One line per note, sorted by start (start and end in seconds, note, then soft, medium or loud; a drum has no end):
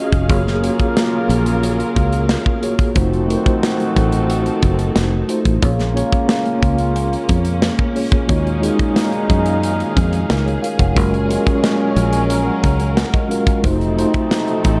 0.00 0.27 D#3 medium
0.00 0.27 A#3 medium
0.00 0.25 C#4 medium
0.00 2.92 C#4 medium
0.00 0.27 D#4 medium
0.00 0.25 F4 medium
0.00 0.25 F#4 medium
0.00 0.26 G#4 medium
0.00 2.92 G#4 medium
0.00 0.31 D#5 medium
0.00 2.92 F5 medium
0.12 0.30 F1 medium
0.12 kick loud
0.12 closed hi-hat medium
0.28 0.69 F#1 loud
0.28 2.59 C#3 medium
0.28 2.93 F#3 medium
0.28 0.58 A#3 medium
0.28 2.59 A#3 medium
0.28 0.58 F4 medium
0.28 2.59 F4 medium
0.28 0.59 F#4 medium
0.28 0.59 G#4 medium
0.28 2.94 A#4 medium
0.28 0.59 C#5 medium
0.28 kick loud
0.28 closed hi-hat medium
0.47 snare soft
0.61 1.78 A#3 medium
0.61 1.79 F4 medium
0.61 1.79 F#4 medium
0.61 1.79 G#4 medium
0.61 1.80 C#5 medium
0.61 closed hi-hat medium
0.79 kick medium
0.79 closed hi-hat soft
0.97 snare loud
0.97 closed hi-hat medium
1.29 1.82 A#1 medium
1.29 closed hi-hat medium
1.46 closed hi-hat medium
1.63 closed hi-hat medium
1.80 closed hi-hat soft
1.96 2.36 C#2 loud
1.96 kick loud
1.96 closed hi-hat medium
2.12 closed hi-hat soft
2.29 snare loud
2.29 closed hi-hat medium
2.46 kick medium
2.61 2.91 A#3 medium
2.61 2.91 F4 medium
2.61 2.92 F#4 medium
2.61 2.92 G#4 medium
2.61 2.92 C#5 medium
2.61 closed hi-hat medium
2.79 kick medium
2.79 closed hi-hat medium
2.94 3.35 F1 loud
2.94 5.25 D#3 medium
2.94 5.60 F3 medium
2.94 5.60 F#3 medium
2.94 3.24 A3 medium
2.94 5.25 C4 medium
2.94 5.61 C4 medium
2.94 3.25 D#4 medium
2.94 5.60 D#4 medium
2.94 3.25 F4 medium
2.94 5.25 F#4 medium
2.94 3.25 F#4 medium
2.94 5.60 A4 medium
2.94 3.25 C5 medium
2.94 kick loud
2.94 closed hi-hat loud
3.13 closed hi-hat soft
3.27 4.45 A3 medium
3.27 4.45 D#4 medium
3.27 4.45 F4 medium
3.27 4.46 F#4 medium
3.27 3.36 A#4 medium
3.27 closed hi-hat medium
3.37 4.49 C5 medium
3.46 kick medium
3.46 closed hi-hat soft
3.63 snare loud
3.63 closed hi-hat medium
3.80 closed hi-hat soft
3.96 4.49 A1 medium
3.96 kick medium
3.96 closed hi-hat medium
4.12 closed hi-hat medium
4.30 closed hi-hat medium
4.46 closed hi-hat soft
4.62 4.89 F#1 loud
4.62 kick medium
4.62 closed hi-hat medium
4.79 closed hi-hat soft
4.96 5.22 F1 medium
4.96 snare loud
4.96 closed hi-hat medium
5.28 5.58 A3 medium
5.28 5.58 D#4 medium
5.28 5.58 F4 medium
5.28 5.59 F#4 medium
5.28 5.59 C5 medium
5.28 closed hi-hat medium
5.45 5.59 A1 medium
5.45 kick medium
5.45 closed hi-hat medium
5.61 6.02 A#1 loud
5.61 7.92 C#3 medium
5.61 8.27 G#3 medium
5.61 5.91 A#3 medium
5.61 7.92 A#3 medium
5.61 10.93 A#3 medium
5.61 5.91 C#4 medium
5.61 10.93 C#4 medium
5.61 5.91 F4 medium
5.61 7.92 F4 medium
5.61 5.92 G#4 medium
5.61 5.92 C#5 medium
5.61 kick loud
5.61 closed hi-hat loud
5.79 snare soft
5.79 closed hi-hat soft
5.93 7.11 A#3 medium
5.93 7.12 C#4 medium
5.93 7.12 F4 medium
5.93 7.12 G#4 medium
5.93 7.12 C#5 loud
5.93 closed hi-hat medium
6.12 kick medium
6.12 closed hi-hat soft
6.29 snare loud
6.29 closed hi-hat loud
6.45 closed hi-hat soft
6.62 7.15 C#2 loud
6.62 kick medium
6.62 closed hi-hat medium
6.78 closed hi-hat medium
6.96 closed hi-hat medium
7.13 closed hi-hat soft
7.29 7.69 F2 medium
7.29 kick loud
7.29 closed hi-hat medium
7.45 closed hi-hat medium
7.62 snare loud
7.62 closed hi-hat medium
7.79 kick medium
7.94 8.24 A#3 medium
7.94 8.24 C#4 medium
7.94 8.25 F4 medium
7.94 8.25 G#4 medium
7.94 8.25 C#5 medium
7.94 open hi-hat medium
8.12 kick loud
8.12 closed hi-hat medium
8.27 8.69 D#2 loud
8.27 10.59 A#2 medium
8.27 10.94 D#3 medium
8.27 8.57 G#3 medium
8.27 10.59 G#3 medium
8.27 8.58 D#4 medium
8.27 10.94 D#4 medium
8.27 10.59 D#4 medium
8.27 8.58 F4 medium
8.27 8.58 F#4 medium
8.27 13.60 G#4 medium
8.27 8.59 C#5 medium
8.27 10.94 F5 medium
8.27 kick loud
8.27 closed hi-hat medium
8.47 closed hi-hat soft
8.61 9.78 G#3 medium
8.61 9.79 D#4 medium
8.61 9.79 F4 medium
8.61 9.80 F#4 medium
8.61 9.80 G#4 medium
8.61 closed hi-hat medium
8.79 kick loud
8.79 closed hi-hat soft
8.96 snare loud
8.96 closed hi-hat medium
9.12 closed hi-hat soft
9.30 9.82 F#2 medium
9.30 kick medium
9.30 closed hi-hat medium
9.46 closed hi-hat medium
9.63 closed hi-hat medium
9.80 closed hi-hat soft
9.97 10.23 F2 medium
9.97 kick medium
9.97 closed hi-hat medium
10.13 closed hi-hat soft
10.30 10.57 C#2 medium
10.30 10.46 F4 medium
10.30 10.46 A#4 medium
10.30 snare loud
10.30 closed hi-hat medium
10.46 10.62 G#4 medium
10.46 10.62 C#5 medium
10.46 closed hi-hat soft
10.62 10.79 A#4 medium
10.62 10.79 F5 medium
10.62 closed hi-hat medium
10.79 10.97 F1 medium
10.79 11.12 C#5 medium
10.79 11.12 F#5 medium
10.79 kick loud
10.79 closed hi-hat soft
10.95 11.36 F#1 loud
10.95 13.27 A#2 medium
10.95 13.62 F#3 medium
10.95 11.25 G#3 medium
10.95 13.27 G#3 medium
10.95 11.26 C#4 medium
10.95 13.27 C#4 medium
10.95 13.62 C#4 medium
10.95 11.26 F4 medium
10.95 11.26 F#4 medium
10.95 13.62 A#4 medium
10.95 11.27 A#4 medium
10.95 13.62 F5 medium
10.95 kick loud
10.95 closed hi-hat loud
11.14 closed hi-hat soft
11.28 12.46 G#3 medium
11.28 12.46 C#4 medium
11.28 12.46 F4 medium
11.28 12.47 F#4 medium
11.28 12.47 A#4 medium
11.28 closed hi-hat medium
11.47 kick medium
11.47 closed hi-hat soft
11.64 snare loud
11.64 closed hi-hat medium
11.96 12.49 A#1 loud
11.96 12.28 G#5 medium
11.96 closed hi-hat medium
12.13 closed hi-hat medium
12.30 12.46 A#5 medium
12.30 closed hi-hat medium
12.46 12.62 F#5 medium
12.63 13.04 C#2 medium
12.63 12.95 A#5 medium
12.63 kick medium
12.63 closed hi-hat medium
12.80 closed hi-hat soft
12.97 13.13 F#5 medium
12.97 snare loud
12.97 closed hi-hat medium
13.14 13.29 D#5 medium
13.14 kick medium
13.14 closed hi-hat soft
13.29 13.59 G#3 medium
13.29 13.59 C#4 medium
13.29 13.60 F4 medium
13.29 13.60 F#4 medium
13.29 13.60 A#4 medium
13.29 13.62 F5 medium
13.29 closed hi-hat medium
13.47 kick medium
13.47 closed hi-hat medium
13.62 14.04 F1 loud
13.62 14.80 C3 medium
13.62 14.80 F3 medium
13.62 14.80 F#3 medium
13.62 13.92 A3 medium
13.62 14.80 A3 medium
13.62 14.80 C4 medium
13.62 13.93 D#4 medium
13.62 14.80 D#4 medium
13.62 13.93 F4 medium
13.62 13.94 F#4 medium
13.62 14.80 A4 medium
13.62 13.94 C5 medium
13.62 kick loud
13.62 closed hi-hat loud
13.81 closed hi-hat soft
13.96 14.80 A3 medium
13.96 14.80 D#4 medium
13.96 14.80 F4 medium
13.96 14.80 F#4 medium
13.96 14.80 C5 medium
13.96 closed hi-hat medium
14.14 kick loud
14.14 closed hi-hat soft
14.31 snare loud
14.31 closed hi-hat medium
14.47 closed hi-hat soft
14.64 14.80 A1 loud
14.64 kick medium
14.64 closed hi-hat medium